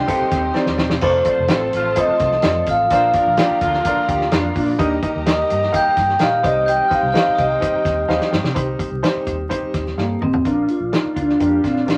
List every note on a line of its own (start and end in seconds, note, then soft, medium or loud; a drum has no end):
0.00 0.98 D#3 medium
0.00 0.98 G3 medium
0.00 2.87 C4 medium
0.00 0.98 G4 medium
0.00 0.98 D#5 medium
0.00 0.53 G5 loud
0.00 0.98 C6 medium
0.00 0.52 G6 medium
0.07 0.38 C4 medium
0.07 0.38 D#4 medium
0.07 0.31 D#4 medium
0.07 0.38 G4 medium
0.07 0.30 G4 medium
0.07 0.38 A4 loud
0.07 kick medium
0.07 closed hi-hat loud
0.20 muted fingered electric bass stroke medium
0.31 0.49 D#2 medium
0.31 0.99 C4 medium
0.31 0.99 D#4 medium
0.31 kick medium
0.31 snare soft
0.31 closed hi-hat medium
0.54 0.85 C4 medium
0.54 0.85 D#4 medium
0.54 0.85 G4 medium
0.54 0.85 D5 loud
0.54 snare medium
0.66 0.76 D#2 medium
0.66 snare medium
0.78 0.88 D#1 medium
0.78 snare medium
0.90 0.99 E1 medium
0.90 snare medium
1.01 1.20 F1 medium
1.01 4.76 F3 medium
1.01 2.90 A3 medium
1.01 1.17 C4 medium
1.01 1.21 D4 loud
1.01 1.17 F4 medium
1.01 2.88 F4 medium
1.01 1.17 A4 medium
1.01 2.89 A4 medium
1.01 1.21 A#4 loud
1.01 1.17 C5 loud
1.01 2.00 C5 medium
1.01 2.88 C5 medium
1.01 1.21 D5 loud
1.01 2.88 A5 medium
1.01 1.93 C6 medium
1.01 kick loud
1.01 splash medium
1.25 1.41 C4 medium
1.25 1.41 F4 medium
1.25 1.41 A4 medium
1.25 1.41 D5 medium
1.25 kick medium
1.25 closed hi-hat medium
1.29 1.47 A3 medium
1.29 1.47 F4 medium
1.29 1.47 C5 loud
1.38 1.47 F1 loud
1.48 1.70 F3 medium
1.48 1.80 C4 medium
1.48 1.80 F4 medium
1.48 1.80 A4 medium
1.48 1.80 C5 medium
1.48 snare loud
1.48 closed hi-hat medium
1.52 1.70 C4 medium
1.52 1.70 A4 loud
1.73 1.91 A1 loud
1.73 2.18 C3 loud
1.73 2.18 A3 loud
1.73 2.18 F4 loud
1.73 closed hi-hat medium
1.96 2.27 C4 medium
1.96 2.27 F4 medium
1.96 2.27 A4 medium
1.96 2.27 C5 medium
1.96 2.64 D#6 medium
1.96 kick medium
1.96 closed hi-hat loud
2.00 2.65 D#5 medium
2.08 muted fingered electric bass stroke medium
2.19 2.38 C2 medium
2.19 kick loud
2.19 snare soft
2.19 closed hi-hat medium
2.32 snare soft
2.42 2.61 F2 loud
2.42 2.74 C4 medium
2.42 2.74 F4 medium
2.42 2.74 A4 medium
2.42 2.74 D5 medium
2.42 snare loud
2.42 closed hi-hat medium
2.66 2.84 A1 medium
2.66 2.92 F5 loud
2.66 2.90 F6 medium
2.66 kick medium
2.66 closed hi-hat medium
2.90 3.08 A#1 loud
2.90 4.78 D3 medium
2.90 6.41 A#3 medium
2.90 3.10 C4 loud
2.90 3.06 D4 loud
2.90 3.06 F4 medium
2.90 4.78 F4 medium
2.90 4.76 F4 medium
2.90 3.10 A4 loud
2.90 3.06 A#4 medium
2.90 3.10 C5 loud
2.90 3.06 D5 loud
2.90 4.76 D5 medium
2.90 4.29 F5 loud
2.90 4.76 A#5 medium
2.90 kick loud
2.90 closed hi-hat medium
2.94 4.30 F6 medium
3.13 3.33 F3 medium
3.13 3.30 D4 medium
3.13 3.34 D4 medium
3.13 3.30 F4 medium
3.13 3.33 A#4 medium
3.13 3.30 A#4 medium
3.13 3.30 D5 medium
3.13 kick medium
3.13 closed hi-hat medium
3.26 3.35 A#1 loud
3.37 3.56 G3 medium
3.37 3.69 D4 medium
3.37 3.56 D#4 medium
3.37 3.69 F4 medium
3.37 3.56 G4 loud
3.37 3.69 A#4 medium
3.37 3.69 D5 medium
3.37 snare loud
3.37 closed hi-hat medium
3.50 muted fingered electric bass stroke soft
3.61 3.79 D2 loud
3.61 4.06 D3 loud
3.61 4.06 A#3 loud
3.61 4.06 F4 loud
3.61 kick medium
3.61 closed hi-hat medium
3.73 snare soft
3.85 4.16 D4 medium
3.85 4.16 F4 medium
3.85 4.16 A#4 medium
3.85 4.16 D5 medium
3.85 kick loud
3.85 closed hi-hat loud
3.97 muted fingered electric bass stroke medium
4.09 4.26 D2 medium
4.09 4.31 G4 medium
4.09 kick medium
4.09 closed hi-hat medium
4.21 snare soft
4.32 4.49 F2 medium
4.32 4.62 D4 medium
4.32 4.54 D4 medium
4.32 4.63 F4 medium
4.32 4.54 F4 medium
4.32 4.63 A#4 medium
4.32 4.63 F5 loud
4.32 snare loud
4.32 closed hi-hat medium
4.55 4.73 A#2 medium
4.55 5.00 A#3 medium
4.55 5.00 D4 medium
4.55 kick loud
4.55 open hi-hat medium
4.79 4.97 D#2 loud
4.79 8.53 D#3 medium
4.79 8.53 G3 medium
4.79 4.94 D#4 loud
4.79 6.42 G4 medium
4.79 4.94 G4 loud
4.79 6.41 G4 medium
4.79 4.94 A#4 medium
4.79 4.94 D#5 loud
4.79 6.41 D#5 medium
4.79 6.41 A#5 loud
4.79 kick loud
4.79 closed hi-hat medium
5.02 5.18 D#4 medium
5.02 5.18 G4 medium
5.02 5.18 A#4 medium
5.02 5.18 D#5 medium
5.02 kick medium
5.02 closed hi-hat medium
5.16 5.41 D#2 loud
5.26 5.57 D#4 medium
5.26 5.57 G4 medium
5.26 5.57 A#4 medium
5.26 5.57 D#5 medium
5.26 5.76 D#5 medium
5.26 5.72 D#6 medium
5.26 snare loud
5.26 closed hi-hat loud
5.50 5.68 G2 loud
5.50 closed hi-hat medium
5.62 snare soft
5.72 6.04 D#4 medium
5.72 6.04 G4 medium
5.72 6.04 A#4 medium
5.72 6.04 F5 medium
5.72 6.19 G6 medium
5.72 kick loud
5.72 closed hi-hat medium
5.76 6.19 G5 loud
5.87 muted fingered electric bass stroke soft
5.97 6.15 G2 medium
5.97 kick loud
5.97 snare soft
5.97 closed hi-hat medium
6.09 snare soft
6.19 6.38 A#2 loud
6.19 6.42 D#4 medium
6.19 6.42 G4 medium
6.19 6.44 A#4 medium
6.19 6.44 D#5 medium
6.19 6.44 F5 loud
6.19 6.43 F6 medium
6.19 snare loud
6.19 closed hi-hat medium
6.43 6.79 C2 loud
6.43 8.54 C4 medium
6.43 6.81 D#4 medium
6.43 8.53 D#4 medium
6.43 6.81 G4 medium
6.43 8.54 G4 medium
6.43 6.81 C5 medium
6.43 8.53 C5 medium
6.43 6.49 D5 medium
6.43 6.69 D#5 loud
6.43 8.53 G5 loud
6.43 6.66 D#6 medium
6.43 kick loud
6.43 closed hi-hat medium
6.49 6.84 D#5 medium
6.66 6.93 G5 loud
6.66 6.89 G6 medium
6.66 closed hi-hat medium
6.88 7.06 D#4 medium
6.88 7.06 G4 medium
6.88 7.06 C5 medium
6.88 7.06 D#5 medium
6.88 7.11 F6 medium
6.88 kick loud
6.88 closed hi-hat medium
6.94 7.17 F5 medium
7.03 7.12 C2 loud
7.12 7.45 D#4 medium
7.12 7.45 G4 medium
7.12 7.45 C5 medium
7.12 7.45 D#5 medium
7.12 7.35 F6 medium
7.12 snare loud
7.12 closed hi-hat medium
7.18 7.41 F5 loud
7.28 muted fingered electric bass stroke medium
7.35 7.55 C2 loud
7.35 8.27 D#6 medium
7.35 kick medium
7.35 closed hi-hat medium
7.39 8.29 D#5 medium
7.60 7.92 D#4 medium
7.60 7.92 G4 medium
7.60 7.92 C5 medium
7.60 7.92 D#5 medium
7.60 kick medium
7.60 closed hi-hat loud
7.74 muted fingered electric bass stroke soft
7.85 8.03 D#2 medium
7.85 kick loud
7.85 snare soft
7.85 closed hi-hat medium
8.08 8.17 D#2 loud
8.08 8.39 D#4 medium
8.08 8.39 G4 medium
8.08 8.40 C5 medium
8.08 8.31 D#5 medium
8.08 8.40 F5 medium
8.08 snare medium
8.21 snare medium
8.31 8.42 G2 loud
8.31 8.54 G5 medium
8.31 snare medium
8.43 8.53 C3 medium
8.43 snare medium
8.54 8.74 C2 loud
8.54 10.43 D#3 medium
8.54 10.43 G3 medium
8.54 10.43 C4 medium
8.54 8.86 D#4 medium
8.54 8.86 G4 medium
8.54 10.43 G4 medium
8.54 8.86 C5 medium
8.54 kick loud
8.54 closed hi-hat medium
8.79 kick medium
8.79 closed hi-hat medium
8.91 9.00 C2 loud
9.03 9.34 D#4 medium
9.03 9.34 G4 medium
9.03 9.34 C5 loud
9.03 snare loud
9.03 closed hi-hat medium
9.15 muted fingered electric bass stroke soft
9.27 9.45 D#2 medium
9.27 kick medium
9.27 closed hi-hat medium
9.49 9.81 D#4 medium
9.49 9.81 G4 medium
9.49 9.81 C5 loud
9.49 kick medium
9.49 closed hi-hat medium
9.62 muted fingered electric bass stroke soft
9.74 9.92 D#2 medium
9.74 kick medium
9.74 snare soft
9.74 closed hi-hat medium
9.87 snare soft
9.97 10.15 G2 medium
9.97 10.23 A#3 medium
9.97 10.21 A4 medium
9.97 10.21 F5 medium
9.97 snare medium
10.21 10.39 A1 medium
10.21 10.45 C4 loud
10.21 10.67 G4 soft
10.21 10.66 D#5 medium
10.21 mid tom medium
10.34 floor tom medium
10.45 10.63 A#1 medium
10.45 11.98 A#3 medium
10.45 10.76 D4 medium
10.45 10.68 D4 medium
10.45 10.76 F4 medium
10.45 11.98 F4 medium
10.45 10.76 A#4 medium
10.45 11.98 D5 soft
10.45 11.98 F5 medium
10.45 kick medium
10.45 closed hi-hat medium
10.68 10.94 F4 medium
10.68 closed hi-hat medium
10.80 10.89 A#1 medium
10.92 11.24 D4 medium
10.92 11.18 D#4 medium
10.92 11.24 F4 medium
10.92 11.24 A#4 medium
10.92 snare loud
10.92 closed hi-hat medium
11.05 muted fingered electric bass stroke soft
11.16 11.34 D2 medium
11.16 11.39 D4 medium
11.16 11.41 D4 medium
11.16 11.39 F4 medium
11.16 kick medium
11.16 closed hi-hat medium
11.29 snare soft
11.40 11.58 F2 medium
11.40 11.71 D4 medium
11.40 11.52 D4 medium
11.40 11.71 F4 medium
11.40 11.63 G4 medium
11.40 11.71 A#4 medium
11.40 kick medium
11.40 closed hi-hat medium
11.64 11.88 A#2 medium
11.64 11.75 C4 medium
11.64 11.98 D4 medium
11.64 11.98 F4 medium
11.64 kick medium
11.64 snare soft
11.64 closed hi-hat medium
11.76 snare soft
11.87 11.98 A#1 medium
11.87 11.98 D4 medium
11.87 11.98 F4 medium
11.87 11.98 A#4 medium
11.87 snare medium
11.87 closed hi-hat medium